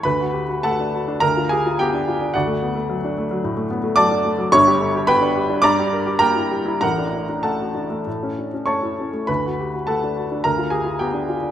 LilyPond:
\new Staff \with { instrumentName = "Grand piano" } { \time 4/4 \key d \major \tempo 4 = 106 << { <b' b''>4 <a' fis'' a''>4 <bes' bes''>8 <aes' aes''>8 <g' g''>4 | <fis' d'' fis''>2~ <fis' d'' fis''>8 r8 <d'' a'' d'''>4 | <cis'' cis'''>4 <b' g'' b''>4 <d'' bes'' d'''>4 <bes' g'' bes''>4 | <bes' fis'' bes''>4 <a' fis'' a''>2 <cis'' a'' cis'''>4 |
<b' b''>4 <a' fis'' a''>4 <bes' bes''>8 <aes' aes''>8 <g' g''>4 | } \\ { d,16 fis'16 g'16 fis'16 a16 d'16 fis'16 d'16 d,16 f'16 g'16 f'16 b16 d'16 f'16 d'16 | d,16 a16 b16 a16 fis16 d'16 a16 fis16 a,16 a16 b16 a16 fis16 d'16 a16 fis16 | <g,, g,>16 g'16 a'16 g'16 b16 d'16 g'16 d'16 g,16 g'16 bes'16 g'16 bes16 e'16 g'16 e'16 | <a,, a,>16 d'16 e'16 d'16 a16 fis'16 d'16 a16 a,16 cis'16 d'16 cis'16 a16 e'16 cis'16 a16 |
d,16 fis'16 g'16 fis'16 a16 d'16 fis'16 d'16 d,16 f'16 g'16 f'16 b16 d'16 f'16 d'16 | } >> }